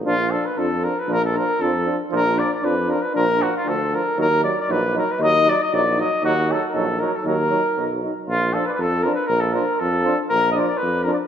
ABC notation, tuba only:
X:1
M:2/4
L:1/8
Q:1/4=117
K:none
V:1 name="Tuba" clef=bass
_B,,,2 F,,2 | _B,,,2 F,,2 | _B,,,2 F,,2 | _B,,,2 D,,2 |
_E,,2 _B,,,2 | _E,,2 _B,,,2 | _E,,2 _B,,,2 | _E,,2 _C,,2 |
_B,,,2 F,,2 | _B,,,2 F,,2 | _B,,,2 F,,2 |]